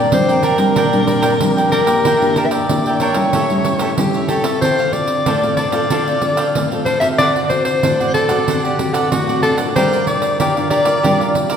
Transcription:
Already playing: A#4 D5 G5
0.12 F3 G3 C4 D4 C5, pandeiro
0.28 A#4 D5 G5, pandeiro
0.42 D4 A#4 D5 G5, pandeiro
0.58 G3 C4 D4 A#4 D5 G5, pandeiro
0.76 A#2 D4 A#4 D5 G5, pandeiro
0.93 G3 C4 D4, pandeiro
1.06 D4 A#4 D5 G5, pandeiro
1.22 D4 A#4 D5 G5, pandeiro
1.40 F3 G3 C4 D4, pandeiro
1.57 A#4 D5 G5, pandeiro
1.71 D4 A#4 D5 G5, pandeiro
1.86 A#3 D4 G4 A#4 D5 G5, pandeiro
2.05 E3 D4 A#4 E5 G5, pandeiro
2.21 A#3 D4 G4, pandeiro
2.36 D4 A#4 E5 G5, pandeiro
2.46 E5
2.51 A#4 D5 E5 G5, pandeiro
2.69 E3 A#3 D4 G4, pandeiro
2.86 A#4 E5 G5, pandeiro
3.00 D4 A#4 C#5 E5 G5, pandeiro
3.15 G3 C#4 E4 A#4 E5 G5, pandeiro
3.33 A2 G4 A4 C#5 E5, pandeiro
3.50 G3 C#4 E4, pandeiro
3.65 G4 A4 C#5 E5, pandeiro
3.79 G4 A4 C#5 E5, pandeiro
3.98 E3 G3 C#4 E4 G4, pandeiro
4.14 A4 C#5 E5, pandeiro
4.29 G4 A4 C#5 E5, pandeiro
4.44 C4 F4 A4 C#5 E5, pandeiro
4.61 D3 D4 A4 C5, pandeiro
4.65 F5
4.79 A4 C5 F5, pandeiro
4.93 C4 F4 A4 D5, muted cavaquinho stroke, pandeiro
5.08 pandeiro
5.26 A2 D4 A4 C5 F5, pandeiro
5.43 C4 F4 A4 C5 F5, pandeiro
5.57 D4 A4 C5 D5 F5, pandeiro
5.72 C4 F4 A4 C5 F5, pandeiro
5.90 D3 C4 D4 F4 A4 C5 F5, pandeiro
6.07 A4 C5 F5, pandeiro
6.22 C4 F4 A4, muted cavaquinho stroke, pandeiro
6.37 A4 C5 F5, pandeiro
6.55 A2, pandeiro
6.72 C4 F4 A4 C5 F5, pandeiro
6.85 D4 A4 C5 F5, pandeiro
7.00 C4 F#4 A4 C5 E5 F5, pandeiro
7.18 D3 D4 C5 D5 F#5, pandeiro
7.36 C5 D5 F#5, pandeiro
7.49 C4 F#4 A4 C5, muted cavaquinho stroke, pandeiro
7.65 C5, pandeiro
7.83 A2 D4 C5 D5 F#5, pandeiro
8.00 C4 F#4 A4 C5 D5 F#5, pandeiro
8.14 D4 A4 C5 D5 F#5, pandeiro
8.29 C4 F#4 A4 C5 D5 F#5, pandeiro
8.47 D3 C4 D4 F#4 A4 C5 D5 F#5, pandeiro
8.64 G4 C5 D5 F#5, pandeiro
8.79 C4 F#4 A4, muted cavaquinho stroke, pandeiro
8.93 A4 C5 D5 F#5, pandeiro
9.11 A2 F#4, pandeiro
9.28 C4 F#4 A4 C5 D5 F#5, pandeiro
9.42 D4 A4 C5 D5 F#5, pandeiro
9.57 D4 F4 A#4 C5 D5 F#5, pandeiro
9.75 G3 G4 A#4 C5 D5 F5, pandeiro
9.92 A#4 D5 F5, pandeiro
10.07 D4 F4 A#4 D5, muted cavaquinho stroke, pandeiro
10.22 pandeiro
10.40 D3 G4 A#4 D5 F5, pandeiro
10.56 D4 F4 A#4 D5 F5, pandeiro
10.70 G4 A#4 D5 F5, pandeiro
10.85 D4 F4 A#4 D5 F5, pandeiro
11.03 G3 D4 F4 G4 A#4 D5 F5, pandeiro
11.20 A#4 D5 F5, pandeiro
11.35 D4 F4 A#4, muted cavaquinho stroke, pandeiro
11.49 A#4 D5 F5, pandeiro

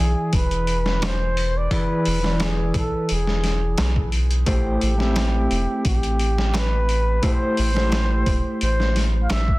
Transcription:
Already playing: E3 E4 G#4 D5
0.00 B1
0.33 E1 B4, kick, open hi-hat
0.51 closed hi-hat
0.67 open hi-hat
0.86 snare
1.02 C5, snare, open hi-hat, darbuka tek
1.37 open hi-hat
1.57 D5
1.71 E3 E4 G#4 B4 D5, kick, open hi-hat
2.05 E1, open hi-hat
2.22 E3 E4 B4 D5, snare
2.40 snare, open hi-hat, darbuka tek
2.44 G#4
2.74 B1, kick, open hi-hat
2.78 A4
3.09 E1 G#4, open hi-hat
3.27 snare
3.44 snare, open hi-hat
3.78 B1, snare, open hi-hat, darbuka tek
3.96 kick
4.12 open hi-hat
4.31 closed hi-hat
4.46 A1 A3 E4 G4 C5, kick, open hi-hat
4.52 G4
4.81 A1, open hi-hat
4.97 A3 C4 E4 G4, snare
5.16 snare, open hi-hat, darbuka tek
5.51 E1, open hi-hat
5.85 A1 G4, kick, open hi-hat
6.03 closed hi-hat
6.19 open hi-hat
6.38 snare
6.54 B4, snare, open hi-hat, darbuka tek
6.89 open hi-hat
7.22 A3 E4 G4 C5, kick, open hi-hat
7.57 A1, open hi-hat
7.74 A3 E4 G4 C5, snare
7.92 snare, open hi-hat, darbuka tek
8.26 E1, kick, open hi-hat
8.61 A1 C5, open hi-hat
8.80 snare
8.96 snare, open hi-hat
9.23 F5
9.30 A1 E5, snare, open hi-hat, darbuka tek
9.48 kick

